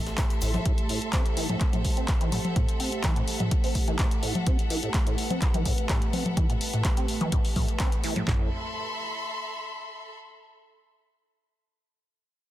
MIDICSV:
0, 0, Header, 1, 6, 480
1, 0, Start_track
1, 0, Tempo, 476190
1, 661, Time_signature, 4, 2, 24, 8
1, 12600, End_track
2, 0, Start_track
2, 0, Title_t, "String section"
2, 0, Program_c, 0, 48
2, 0, Note_on_c, 0, 69, 83
2, 0, Note_on_c, 0, 76, 74
2, 0, Note_on_c, 0, 84, 77
2, 1293, Note_on_c, 0, 78, 75
2, 1314, Note_off_c, 0, 84, 0
2, 8331, Note_off_c, 0, 69, 0
2, 8342, Note_off_c, 0, 76, 0
2, 8343, Note_on_c, 0, 69, 72
2, 8368, Note_off_c, 0, 78, 0
2, 8419, Note_on_c, 0, 76, 73
2, 8496, Note_on_c, 0, 83, 77
2, 8564, Note_on_c, 0, 84, 74
2, 10222, Note_off_c, 0, 69, 0
2, 10223, Note_off_c, 0, 76, 0
2, 10224, Note_off_c, 0, 83, 0
2, 10224, Note_off_c, 0, 84, 0
2, 12600, End_track
3, 0, Start_track
3, 0, Title_t, "Analog synth pad"
3, 0, Program_c, 1, 89
3, 0, Note_on_c, 1, 57, 80
3, 0, Note_on_c, 1, 67, 75
3, 0, Note_on_c, 1, 76, 90
3, 650, Note_off_c, 1, 76, 0
3, 663, Note_on_c, 1, 72, 89
3, 4489, Note_off_c, 1, 72, 0
3, 4504, Note_on_c, 1, 71, 91
3, 8301, Note_off_c, 1, 67, 0
3, 8302, Note_off_c, 1, 57, 0
3, 8330, Note_off_c, 1, 71, 0
3, 12600, End_track
4, 0, Start_track
4, 0, Title_t, "Acid bass"
4, 0, Program_c, 2, 38
4, 181, Note_on_c, 2, 45, 82
4, 250, Note_off_c, 2, 45, 0
4, 420, Note_on_c, 2, 45, 79
4, 524, Note_off_c, 2, 45, 0
4, 546, Note_on_c, 2, 45, 78
4, 609, Note_off_c, 2, 45, 0
4, 660, Note_on_c, 2, 45, 82
4, 730, Note_off_c, 2, 45, 0
4, 901, Note_on_c, 2, 45, 78
4, 1005, Note_off_c, 2, 45, 0
4, 1141, Note_on_c, 2, 60, 77
4, 1245, Note_off_c, 2, 60, 0
4, 1381, Note_on_c, 2, 52, 106
4, 1485, Note_off_c, 2, 52, 0
4, 1507, Note_on_c, 2, 45, 77
4, 1570, Note_off_c, 2, 45, 0
4, 1746, Note_on_c, 2, 45, 75
4, 1841, Note_off_c, 2, 45, 0
4, 1988, Note_on_c, 2, 60, 73
4, 2082, Note_off_c, 2, 60, 0
4, 2228, Note_on_c, 2, 52, 105
4, 2322, Note_off_c, 2, 52, 0
4, 2341, Note_on_c, 2, 45, 81
4, 2411, Note_off_c, 2, 45, 0
4, 2580, Note_on_c, 2, 45, 84
4, 2684, Note_off_c, 2, 45, 0
4, 2821, Note_on_c, 2, 60, 79
4, 2925, Note_off_c, 2, 60, 0
4, 3062, Note_on_c, 2, 52, 105
4, 3166, Note_off_c, 2, 52, 0
4, 3188, Note_on_c, 2, 45, 76
4, 3250, Note_off_c, 2, 45, 0
4, 3428, Note_on_c, 2, 45, 81
4, 3522, Note_off_c, 2, 45, 0
4, 3669, Note_on_c, 2, 60, 77
4, 3763, Note_off_c, 2, 60, 0
4, 3908, Note_on_c, 2, 52, 105
4, 4002, Note_off_c, 2, 52, 0
4, 4023, Note_on_c, 2, 45, 83
4, 4092, Note_off_c, 2, 45, 0
4, 4263, Note_on_c, 2, 45, 83
4, 4366, Note_off_c, 2, 45, 0
4, 4504, Note_on_c, 2, 60, 81
4, 4606, Note_off_c, 2, 60, 0
4, 4743, Note_on_c, 2, 52, 102
4, 4846, Note_off_c, 2, 52, 0
4, 4869, Note_on_c, 2, 45, 79
4, 4931, Note_off_c, 2, 45, 0
4, 5109, Note_on_c, 2, 45, 78
4, 5202, Note_off_c, 2, 45, 0
4, 5348, Note_on_c, 2, 60, 78
4, 5442, Note_off_c, 2, 60, 0
4, 5588, Note_on_c, 2, 52, 96
4, 5682, Note_off_c, 2, 52, 0
4, 5702, Note_on_c, 2, 45, 73
4, 5771, Note_off_c, 2, 45, 0
4, 5943, Note_on_c, 2, 45, 87
4, 6046, Note_off_c, 2, 45, 0
4, 6183, Note_on_c, 2, 60, 77
4, 6286, Note_off_c, 2, 60, 0
4, 6423, Note_on_c, 2, 52, 101
4, 6526, Note_off_c, 2, 52, 0
4, 6549, Note_on_c, 2, 45, 74
4, 6611, Note_off_c, 2, 45, 0
4, 6789, Note_on_c, 2, 45, 82
4, 6882, Note_off_c, 2, 45, 0
4, 7028, Note_on_c, 2, 60, 77
4, 7122, Note_off_c, 2, 60, 0
4, 7268, Note_on_c, 2, 52, 106
4, 7362, Note_off_c, 2, 52, 0
4, 7382, Note_on_c, 2, 45, 81
4, 7451, Note_off_c, 2, 45, 0
4, 7622, Note_on_c, 2, 45, 76
4, 7726, Note_off_c, 2, 45, 0
4, 7864, Note_on_c, 2, 60, 81
4, 7966, Note_off_c, 2, 60, 0
4, 8103, Note_on_c, 2, 52, 104
4, 8206, Note_off_c, 2, 52, 0
4, 8228, Note_on_c, 2, 45, 77
4, 8291, Note_off_c, 2, 45, 0
4, 8342, Note_on_c, 2, 45, 91
4, 8565, Note_off_c, 2, 45, 0
4, 12600, End_track
5, 0, Start_track
5, 0, Title_t, "Sub bass"
5, 0, Program_c, 3, 38
5, 422, Note_on_c, 3, 33, 103
5, 578, Note_off_c, 3, 33, 0
5, 8343, Note_on_c, 3, 33, 99
5, 8565, Note_off_c, 3, 33, 0
5, 12600, End_track
6, 0, Start_track
6, 0, Title_t, "Drums"
6, 66, Note_on_c, 9, 42, 33
6, 66, Note_on_c, 9, 82, 41
6, 67, Note_on_c, 9, 38, 40
6, 167, Note_off_c, 9, 42, 0
6, 167, Note_off_c, 9, 82, 0
6, 168, Note_off_c, 9, 38, 0
6, 177, Note_on_c, 9, 39, 117
6, 180, Note_on_c, 9, 42, 73
6, 181, Note_on_c, 9, 36, 127
6, 181, Note_on_c, 9, 38, 119
6, 181, Note_on_c, 9, 54, 91
6, 181, Note_on_c, 9, 82, 55
6, 278, Note_off_c, 9, 39, 0
6, 281, Note_off_c, 9, 42, 0
6, 281, Note_off_c, 9, 82, 0
6, 282, Note_off_c, 9, 36, 0
6, 282, Note_off_c, 9, 38, 0
6, 282, Note_off_c, 9, 54, 0
6, 306, Note_on_c, 9, 42, 50
6, 311, Note_on_c, 9, 82, 25
6, 407, Note_off_c, 9, 42, 0
6, 412, Note_off_c, 9, 82, 0
6, 418, Note_on_c, 9, 82, 101
6, 420, Note_on_c, 9, 46, 104
6, 422, Note_on_c, 9, 54, 69
6, 519, Note_off_c, 9, 82, 0
6, 521, Note_off_c, 9, 46, 0
6, 522, Note_off_c, 9, 54, 0
6, 542, Note_on_c, 9, 82, 36
6, 546, Note_on_c, 9, 38, 53
6, 546, Note_on_c, 9, 42, 34
6, 546, Note_on_c, 9, 64, 96
6, 643, Note_off_c, 9, 82, 0
6, 646, Note_off_c, 9, 42, 0
6, 646, Note_off_c, 9, 64, 0
6, 647, Note_off_c, 9, 38, 0
6, 660, Note_on_c, 9, 42, 74
6, 661, Note_on_c, 9, 36, 123
6, 761, Note_off_c, 9, 42, 0
6, 762, Note_off_c, 9, 36, 0
6, 786, Note_on_c, 9, 42, 50
6, 886, Note_off_c, 9, 42, 0
6, 900, Note_on_c, 9, 46, 109
6, 1001, Note_off_c, 9, 46, 0
6, 1026, Note_on_c, 9, 42, 34
6, 1127, Note_off_c, 9, 42, 0
6, 1137, Note_on_c, 9, 39, 117
6, 1140, Note_on_c, 9, 42, 78
6, 1141, Note_on_c, 9, 36, 118
6, 1238, Note_off_c, 9, 39, 0
6, 1240, Note_off_c, 9, 42, 0
6, 1242, Note_off_c, 9, 36, 0
6, 1266, Note_on_c, 9, 42, 52
6, 1367, Note_off_c, 9, 42, 0
6, 1380, Note_on_c, 9, 46, 104
6, 1481, Note_off_c, 9, 46, 0
6, 1506, Note_on_c, 9, 42, 35
6, 1506, Note_on_c, 9, 64, 87
6, 1607, Note_off_c, 9, 42, 0
6, 1607, Note_off_c, 9, 64, 0
6, 1618, Note_on_c, 9, 39, 58
6, 1621, Note_on_c, 9, 42, 77
6, 1622, Note_on_c, 9, 36, 117
6, 1718, Note_off_c, 9, 39, 0
6, 1721, Note_off_c, 9, 42, 0
6, 1723, Note_off_c, 9, 36, 0
6, 1745, Note_on_c, 9, 42, 51
6, 1745, Note_on_c, 9, 64, 95
6, 1846, Note_off_c, 9, 42, 0
6, 1846, Note_off_c, 9, 64, 0
6, 1860, Note_on_c, 9, 46, 103
6, 1862, Note_on_c, 9, 36, 61
6, 1961, Note_off_c, 9, 46, 0
6, 1963, Note_off_c, 9, 36, 0
6, 1986, Note_on_c, 9, 42, 35
6, 2087, Note_off_c, 9, 42, 0
6, 2097, Note_on_c, 9, 39, 109
6, 2100, Note_on_c, 9, 42, 72
6, 2102, Note_on_c, 9, 36, 125
6, 2198, Note_off_c, 9, 39, 0
6, 2201, Note_off_c, 9, 42, 0
6, 2202, Note_off_c, 9, 36, 0
6, 2227, Note_on_c, 9, 42, 51
6, 2327, Note_off_c, 9, 42, 0
6, 2341, Note_on_c, 9, 46, 109
6, 2341, Note_on_c, 9, 64, 87
6, 2441, Note_off_c, 9, 46, 0
6, 2441, Note_off_c, 9, 64, 0
6, 2467, Note_on_c, 9, 42, 36
6, 2467, Note_on_c, 9, 64, 97
6, 2567, Note_off_c, 9, 42, 0
6, 2567, Note_off_c, 9, 64, 0
6, 2581, Note_on_c, 9, 42, 75
6, 2582, Note_on_c, 9, 36, 114
6, 2682, Note_off_c, 9, 42, 0
6, 2683, Note_off_c, 9, 36, 0
6, 2707, Note_on_c, 9, 42, 52
6, 2808, Note_off_c, 9, 42, 0
6, 2821, Note_on_c, 9, 46, 104
6, 2922, Note_off_c, 9, 46, 0
6, 2947, Note_on_c, 9, 42, 38
6, 3048, Note_off_c, 9, 42, 0
6, 3059, Note_on_c, 9, 39, 116
6, 3062, Note_on_c, 9, 36, 113
6, 3062, Note_on_c, 9, 42, 77
6, 3160, Note_off_c, 9, 39, 0
6, 3163, Note_off_c, 9, 36, 0
6, 3163, Note_off_c, 9, 42, 0
6, 3188, Note_on_c, 9, 42, 52
6, 3289, Note_off_c, 9, 42, 0
6, 3302, Note_on_c, 9, 46, 97
6, 3403, Note_off_c, 9, 46, 0
6, 3428, Note_on_c, 9, 42, 36
6, 3428, Note_on_c, 9, 64, 85
6, 3529, Note_off_c, 9, 42, 0
6, 3529, Note_off_c, 9, 64, 0
6, 3542, Note_on_c, 9, 36, 111
6, 3542, Note_on_c, 9, 42, 80
6, 3643, Note_off_c, 9, 36, 0
6, 3643, Note_off_c, 9, 42, 0
6, 3667, Note_on_c, 9, 46, 57
6, 3768, Note_off_c, 9, 46, 0
6, 3781, Note_on_c, 9, 46, 96
6, 3782, Note_on_c, 9, 36, 60
6, 3882, Note_off_c, 9, 46, 0
6, 3883, Note_off_c, 9, 36, 0
6, 3908, Note_on_c, 9, 42, 34
6, 4008, Note_off_c, 9, 42, 0
6, 4018, Note_on_c, 9, 39, 112
6, 4021, Note_on_c, 9, 42, 78
6, 4022, Note_on_c, 9, 36, 121
6, 4119, Note_off_c, 9, 39, 0
6, 4122, Note_off_c, 9, 42, 0
6, 4123, Note_off_c, 9, 36, 0
6, 4146, Note_on_c, 9, 42, 54
6, 4247, Note_off_c, 9, 42, 0
6, 4261, Note_on_c, 9, 46, 102
6, 4362, Note_off_c, 9, 46, 0
6, 4387, Note_on_c, 9, 42, 37
6, 4387, Note_on_c, 9, 64, 101
6, 4488, Note_off_c, 9, 42, 0
6, 4488, Note_off_c, 9, 64, 0
6, 4501, Note_on_c, 9, 42, 77
6, 4502, Note_on_c, 9, 36, 118
6, 4602, Note_off_c, 9, 42, 0
6, 4603, Note_off_c, 9, 36, 0
6, 4627, Note_on_c, 9, 42, 54
6, 4727, Note_off_c, 9, 42, 0
6, 4741, Note_on_c, 9, 46, 102
6, 4842, Note_off_c, 9, 46, 0
6, 4867, Note_on_c, 9, 42, 39
6, 4968, Note_off_c, 9, 42, 0
6, 4978, Note_on_c, 9, 39, 119
6, 4981, Note_on_c, 9, 42, 84
6, 4982, Note_on_c, 9, 36, 110
6, 5079, Note_off_c, 9, 39, 0
6, 5082, Note_off_c, 9, 42, 0
6, 5083, Note_off_c, 9, 36, 0
6, 5107, Note_on_c, 9, 42, 55
6, 5208, Note_off_c, 9, 42, 0
6, 5221, Note_on_c, 9, 46, 93
6, 5322, Note_off_c, 9, 46, 0
6, 5347, Note_on_c, 9, 42, 37
6, 5347, Note_on_c, 9, 64, 85
6, 5448, Note_off_c, 9, 42, 0
6, 5448, Note_off_c, 9, 64, 0
6, 5459, Note_on_c, 9, 39, 61
6, 5462, Note_on_c, 9, 36, 111
6, 5462, Note_on_c, 9, 42, 83
6, 5559, Note_off_c, 9, 39, 0
6, 5562, Note_off_c, 9, 42, 0
6, 5563, Note_off_c, 9, 36, 0
6, 5587, Note_on_c, 9, 42, 52
6, 5587, Note_on_c, 9, 64, 93
6, 5688, Note_off_c, 9, 42, 0
6, 5688, Note_off_c, 9, 64, 0
6, 5700, Note_on_c, 9, 46, 100
6, 5702, Note_on_c, 9, 36, 60
6, 5801, Note_off_c, 9, 46, 0
6, 5803, Note_off_c, 9, 36, 0
6, 5826, Note_on_c, 9, 42, 36
6, 5927, Note_off_c, 9, 42, 0
6, 5938, Note_on_c, 9, 39, 114
6, 5941, Note_on_c, 9, 42, 80
6, 5942, Note_on_c, 9, 36, 114
6, 6039, Note_off_c, 9, 39, 0
6, 6042, Note_off_c, 9, 36, 0
6, 6042, Note_off_c, 9, 42, 0
6, 6066, Note_on_c, 9, 42, 54
6, 6167, Note_off_c, 9, 42, 0
6, 6181, Note_on_c, 9, 46, 97
6, 6181, Note_on_c, 9, 64, 83
6, 6282, Note_off_c, 9, 46, 0
6, 6282, Note_off_c, 9, 64, 0
6, 6308, Note_on_c, 9, 42, 37
6, 6308, Note_on_c, 9, 64, 96
6, 6409, Note_off_c, 9, 42, 0
6, 6409, Note_off_c, 9, 64, 0
6, 6422, Note_on_c, 9, 36, 117
6, 6422, Note_on_c, 9, 42, 81
6, 6522, Note_off_c, 9, 36, 0
6, 6523, Note_off_c, 9, 42, 0
6, 6548, Note_on_c, 9, 42, 53
6, 6649, Note_off_c, 9, 42, 0
6, 6662, Note_on_c, 9, 46, 105
6, 6762, Note_off_c, 9, 46, 0
6, 6789, Note_on_c, 9, 42, 41
6, 6889, Note_off_c, 9, 42, 0
6, 6898, Note_on_c, 9, 39, 124
6, 6901, Note_on_c, 9, 42, 85
6, 6902, Note_on_c, 9, 36, 116
6, 6999, Note_off_c, 9, 39, 0
6, 7002, Note_off_c, 9, 42, 0
6, 7003, Note_off_c, 9, 36, 0
6, 7027, Note_on_c, 9, 42, 57
6, 7128, Note_off_c, 9, 42, 0
6, 7141, Note_on_c, 9, 46, 100
6, 7241, Note_off_c, 9, 46, 0
6, 7267, Note_on_c, 9, 42, 38
6, 7267, Note_on_c, 9, 64, 82
6, 7368, Note_off_c, 9, 42, 0
6, 7368, Note_off_c, 9, 64, 0
6, 7381, Note_on_c, 9, 42, 85
6, 7382, Note_on_c, 9, 36, 107
6, 7481, Note_off_c, 9, 42, 0
6, 7482, Note_off_c, 9, 36, 0
6, 7506, Note_on_c, 9, 46, 57
6, 7607, Note_off_c, 9, 46, 0
6, 7621, Note_on_c, 9, 46, 100
6, 7621, Note_on_c, 9, 64, 79
6, 7622, Note_on_c, 9, 36, 61
6, 7722, Note_off_c, 9, 46, 0
6, 7722, Note_off_c, 9, 64, 0
6, 7723, Note_off_c, 9, 36, 0
6, 7746, Note_on_c, 9, 42, 37
6, 7847, Note_off_c, 9, 42, 0
6, 7857, Note_on_c, 9, 39, 118
6, 7860, Note_on_c, 9, 42, 82
6, 7862, Note_on_c, 9, 36, 116
6, 7958, Note_off_c, 9, 39, 0
6, 7961, Note_off_c, 9, 42, 0
6, 7963, Note_off_c, 9, 36, 0
6, 7986, Note_on_c, 9, 42, 58
6, 8087, Note_off_c, 9, 42, 0
6, 8100, Note_on_c, 9, 46, 101
6, 8201, Note_off_c, 9, 46, 0
6, 8226, Note_on_c, 9, 42, 40
6, 8226, Note_on_c, 9, 64, 89
6, 8327, Note_off_c, 9, 42, 0
6, 8327, Note_off_c, 9, 64, 0
6, 8342, Note_on_c, 9, 36, 107
6, 8343, Note_on_c, 9, 39, 91
6, 8343, Note_on_c, 9, 43, 106
6, 8443, Note_off_c, 9, 36, 0
6, 8443, Note_off_c, 9, 39, 0
6, 8443, Note_off_c, 9, 43, 0
6, 12600, End_track
0, 0, End_of_file